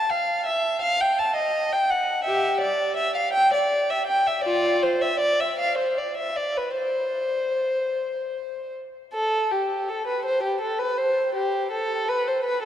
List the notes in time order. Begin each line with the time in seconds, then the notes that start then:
0.09 F5
0.46 E5
0.82 F5
1.01 G5
1.19 A5
1.36 D#5
1.72 G5
1.90 F#5
2.25 G4 E5
2.61 D5
2.97 E5
3.17 F5
3.33 G5
3.54 D5
3.90 E5
4.07 G5
4.27 E5
4.44 F4 D5
4.83 C5
5.01 E5
5.20 D5
5.40 E5
5.60 F5
5.78 C5
5.98 D5
6.17 E5
6.36 D5
6.57 B4
6.77 C5
9.14 A4
9.51 G4
9.88 A4
10.07 B4
10.25 C5
10.43 G4
10.61 A4
10.79 B4
10.97 C5
11.35 G4
11.72 A4
12.08 B4
12.27 C5
12.44 B4